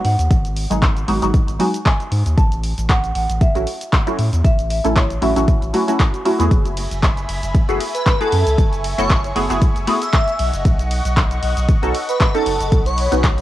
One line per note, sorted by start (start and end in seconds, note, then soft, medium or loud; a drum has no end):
0.00 sub drop medium
0.05 0.16 G#2 medium
0.05 1.65 F#5 loud
0.05 open hi-hat loud
0.19 0.28 D#2 medium
0.19 closed hi-hat medium
0.19 shaker medium
0.31 0.66 G#1 loud
0.31 kick loud
0.31 closed hi-hat medium
0.31 shaker medium
0.45 closed hi-hat soft
0.45 shaker soft
0.56 open hi-hat loud
0.70 1.04 G#1 loud
0.70 1.05 F#3 medium
0.70 1.05 G#3 medium
0.70 1.05 B3 medium
0.70 1.06 D#4 medium
0.70 1.06 G#4 loud
0.70 closed hi-hat medium
0.70 shaker medium
0.82 kick loud
0.82 clap loud
0.82 closed hi-hat medium
0.82 shaker medium
0.97 closed hi-hat soft
0.97 shaker soft
1.08 1.20 G#1 medium
1.08 1.20 F#3 medium
1.08 1.20 G#3 medium
1.08 1.20 B3 medium
1.08 1.21 D#4 medium
1.08 1.21 F#4 loud
1.08 open hi-hat loud
1.22 1.32 G#1 loud
1.22 1.57 F#3 medium
1.22 1.57 G#3 medium
1.22 1.57 B3 medium
1.22 1.57 D#4 medium
1.22 1.57 F#4 medium
1.22 closed hi-hat medium
1.22 shaker medium
1.34 kick loud
1.34 closed hi-hat medium
1.34 shaker medium
1.48 1.58 G#1 medium
1.48 closed hi-hat soft
1.48 shaker soft
1.59 1.74 F#3 loud
1.59 1.74 G#3 medium
1.59 1.74 B3 medium
1.59 1.75 D#4 medium
1.59 1.75 F#4 loud
1.59 1.85 G#5 loud
1.59 open hi-hat loud
1.74 closed hi-hat medium
1.74 shaker medium
1.86 2.39 G#5 loud
1.86 kick loud
1.86 clap loud
1.86 closed hi-hat medium
1.86 shaker medium
2.00 closed hi-hat soft
2.00 shaker soft
2.12 2.23 G#2 medium
2.12 open hi-hat loud
2.26 2.35 D#2 medium
2.26 closed hi-hat medium
2.26 shaker medium
2.37 2.73 A1 loud
2.37 2.91 A5 loud
2.37 kick loud
2.37 closed hi-hat medium
2.37 shaker medium
2.52 closed hi-hat soft
2.52 shaker soft
2.63 open hi-hat loud
2.78 3.11 A1 loud
2.78 closed hi-hat medium
2.78 shaker medium
2.89 3.14 F#5 loud
2.89 kick loud
2.89 clap loud
2.89 closed hi-hat medium
2.89 shaker medium
3.04 closed hi-hat soft
3.04 shaker soft
3.15 3.27 A1 medium
3.15 3.39 F#5 loud
3.15 open hi-hat loud
3.29 3.39 A1 loud
3.29 closed hi-hat medium
3.29 shaker medium
3.41 4.43 E5 loud
3.41 kick loud
3.41 closed hi-hat medium
3.41 shaker medium
3.55 3.65 A1 medium
3.55 3.67 F#3 medium
3.55 3.67 A3 medium
3.55 3.67 C#4 medium
3.55 3.67 E4 medium
3.55 3.67 F#4 medium
3.55 closed hi-hat soft
3.55 shaker soft
3.67 open hi-hat loud
3.81 closed hi-hat medium
3.81 shaker medium
3.93 kick loud
3.93 clap loud
3.93 closed hi-hat medium
3.93 shaker medium
4.06 4.19 F#3 medium
4.06 4.19 A3 medium
4.06 4.19 C#4 medium
4.06 4.19 E4 medium
4.06 4.19 F#4 loud
4.06 closed hi-hat soft
4.06 shaker soft
4.18 4.30 A2 medium
4.18 open hi-hat loud
4.33 4.42 E2 medium
4.33 closed hi-hat medium
4.33 shaker medium
4.44 4.80 A1 loud
4.44 4.69 E5 loud
4.44 kick loud
4.44 closed hi-hat medium
4.44 shaker medium
4.59 closed hi-hat soft
4.59 shaker soft
4.70 4.97 E5 loud
4.70 open hi-hat loud
4.84 5.18 A1 loud
4.84 5.19 F#3 medium
4.84 5.19 A3 medium
4.84 5.19 C#4 medium
4.84 5.19 E4 medium
4.84 5.19 A4 medium
4.84 closed hi-hat medium
4.84 shaker medium
4.96 5.23 C#5 medium
4.96 kick loud
4.96 clap loud
4.96 closed hi-hat medium
4.96 shaker medium
5.10 closed hi-hat soft
5.10 shaker soft
5.21 5.33 A1 medium
5.21 5.34 F#3 medium
5.21 5.34 A3 medium
5.21 5.34 C#4 medium
5.21 5.34 E4 medium
5.21 5.34 F#4 loud
5.21 6.22 E5 medium
5.21 open hi-hat loud
5.36 5.46 A1 loud
5.36 5.71 F#3 medium
5.36 5.71 A3 medium
5.36 5.71 C#4 medium
5.36 5.71 E4 medium
5.36 5.71 F#4 medium
5.36 closed hi-hat medium
5.36 shaker medium
5.48 kick loud
5.48 closed hi-hat medium
5.48 shaker medium
5.62 5.71 A1 medium
5.62 closed hi-hat soft
5.62 shaker soft
5.73 5.84 F#3 medium
5.73 5.84 A3 medium
5.73 5.85 C#4 medium
5.73 5.85 E4 medium
5.73 5.85 F#4 loud
5.73 open hi-hat loud
5.88 6.22 F#3 medium
5.88 6.23 A3 medium
5.88 6.23 C#4 medium
5.88 6.23 E4 medium
5.88 6.23 F#4 loud
5.88 closed hi-hat medium
5.88 shaker medium
6.00 kick loud
6.00 clap loud
6.00 closed hi-hat medium
6.00 shaker medium
6.14 closed hi-hat soft
6.14 shaker soft
6.25 6.36 F#3 medium
6.25 6.36 A3 medium
6.25 6.36 C#4 medium
6.25 6.36 E4 medium
6.25 6.37 F#4 loud
6.25 open hi-hat loud
6.39 6.49 E2 medium
6.39 7.65 A3 loud
6.39 7.65 B3 medium
6.39 7.66 E4 medium
6.39 7.66 F#4 medium
6.39 7.66 G#4 loud
6.39 closed hi-hat medium
6.39 shaker medium
6.51 6.87 F#1 loud
6.51 10.35 E5 medium
6.51 10.35 G#5 medium
6.51 8.56 B5 medium
6.51 kick loud
6.51 closed hi-hat medium
6.51 shaker medium
6.66 closed hi-hat soft
6.66 shaker soft
6.77 open hi-hat loud
6.77 ride medium
6.91 7.25 F#1 loud
6.91 closed hi-hat medium
6.91 shaker medium
7.03 kick loud
7.03 clap loud
7.03 closed hi-hat medium
7.03 shaker medium
7.17 closed hi-hat soft
7.17 shaker soft
7.29 7.40 F#1 medium
7.29 open hi-hat loud
7.29 ride medium
7.43 7.52 F#1 loud
7.43 closed hi-hat medium
7.43 shaker medium
7.55 kick loud
7.55 closed hi-hat medium
7.55 shaker medium
7.69 7.78 F#1 medium
7.69 7.81 A3 medium
7.69 7.81 B3 medium
7.69 7.81 E4 medium
7.69 7.81 F#4 medium
7.69 7.81 G#4 medium
7.69 closed hi-hat soft
7.69 shaker soft
7.81 open hi-hat loud
7.81 ride medium
7.95 8.02 B4 medium
7.95 closed hi-hat medium
7.95 shaker medium
8.06 8.16 B4 medium
8.06 kick loud
8.06 clap loud
8.06 closed hi-hat medium
8.06 shaker medium
8.20 8.32 A3 medium
8.20 8.33 B3 medium
8.20 8.33 E4 medium
8.20 8.33 F#4 medium
8.20 8.33 G#4 medium
8.20 8.58 A4 medium
8.20 closed hi-hat soft
8.20 shaker soft
8.32 8.44 F#2 medium
8.32 open hi-hat loud
8.32 ride medium
8.47 8.56 C#2 medium
8.47 closed hi-hat medium
8.47 shaker medium
8.58 8.94 F#1 loud
8.58 10.37 C#6 medium
8.58 kick loud
8.58 closed hi-hat medium
8.58 shaker medium
8.73 closed hi-hat soft
8.73 shaker soft
8.84 open hi-hat loud
8.84 ride medium
8.98 9.32 F#1 loud
8.98 9.33 A3 medium
8.98 9.33 B3 medium
8.98 9.33 E4 medium
8.98 9.33 F#4 medium
8.98 9.33 A4 loud
8.98 9.10 C#5 loud
8.98 closed hi-hat medium
8.98 shaker medium
9.10 kick loud
9.10 clap loud
9.10 closed hi-hat medium
9.10 shaker medium
9.24 closed hi-hat soft
9.24 shaker soft
9.35 9.47 F#1 medium
9.35 9.48 A3 medium
9.35 9.48 B3 medium
9.35 9.48 E4 medium
9.35 9.48 F#4 medium
9.35 9.48 G#4 loud
9.35 open hi-hat loud
9.35 ride medium
9.50 9.59 F#1 loud
9.50 9.85 A3 medium
9.50 9.85 B3 medium
9.50 9.85 E4 medium
9.50 9.85 F#4 medium
9.50 9.85 G#4 medium
9.50 closed hi-hat medium
9.50 shaker medium
9.62 kick loud
9.62 closed hi-hat medium
9.62 shaker medium
9.76 9.85 F#1 medium
9.76 closed hi-hat soft
9.76 shaker soft
9.87 10.02 A3 loud
9.87 10.02 B3 medium
9.87 10.02 E4 medium
9.87 10.02 F#4 medium
9.87 10.02 G#4 loud
9.87 open hi-hat loud
9.87 ride medium
10.02 10.45 E5 medium
10.02 closed hi-hat medium
10.02 shaker medium
10.13 kick loud
10.13 clap loud
10.13 closed hi-hat medium
10.13 shaker medium
10.28 closed hi-hat soft
10.28 shaker soft
10.39 10.51 B1 medium
10.39 13.41 D#5 medium
10.39 13.41 F#5 medium
10.39 13.41 C#6 medium
10.39 open hi-hat loud
10.39 ride medium
10.53 10.63 F#1 medium
10.53 closed hi-hat medium
10.53 shaker medium
10.65 11.01 B1 loud
10.65 kick loud
10.65 closed hi-hat medium
10.65 shaker medium
10.79 closed hi-hat soft
10.79 shaker soft
10.91 open hi-hat loud
10.91 ride medium
11.05 11.39 B1 loud
11.05 closed hi-hat medium
11.05 shaker medium
11.17 kick loud
11.17 clap loud
11.17 closed hi-hat medium
11.17 shaker medium
11.31 closed hi-hat soft
11.31 shaker soft
11.43 11.54 B1 medium
11.43 open hi-hat loud
11.43 ride medium
11.57 11.66 B1 loud
11.57 closed hi-hat medium
11.57 shaker medium
11.68 kick loud
11.68 closed hi-hat medium
11.68 shaker medium
11.82 11.92 B1 medium
11.82 11.94 B3 medium
11.82 11.95 C#4 medium
11.82 11.95 D#4 medium
11.82 11.95 F#4 medium
11.82 11.95 A4 medium
11.82 closed hi-hat soft
11.82 shaker soft
11.94 open hi-hat loud
11.94 ride medium
12.09 12.16 B4 medium
12.09 closed hi-hat medium
12.09 shaker medium
12.20 12.29 B4 medium
12.20 kick loud
12.20 clap loud
12.20 closed hi-hat medium
12.20 shaker medium
12.34 12.46 B3 medium
12.34 12.46 C#4 medium
12.34 12.46 D#4 medium
12.34 12.46 F#4 medium
12.34 12.72 A4 loud
12.34 12.47 A4 medium
12.34 closed hi-hat soft
12.34 shaker soft
12.46 12.58 F#1 medium
12.46 13.41 B5 medium
12.46 open hi-hat loud
12.46 ride medium
12.60 12.70 F#1 medium
12.60 closed hi-hat medium
12.60 shaker medium
12.72 13.08 B1 loud
12.72 kick loud
12.72 closed hi-hat medium
12.72 shaker medium
12.86 13.24 C#5 loud
12.86 closed hi-hat soft
12.86 shaker soft
12.98 open hi-hat loud
12.98 ride medium
13.12 13.41 B1 loud
13.12 13.41 B3 medium
13.12 13.41 C#4 medium
13.12 13.41 D#4 medium
13.12 13.41 F#4 medium
13.12 13.41 B4 medium
13.12 closed hi-hat medium
13.12 shaker medium
13.24 kick loud
13.24 clap loud
13.24 closed hi-hat medium
13.24 shaker medium
13.38 closed hi-hat soft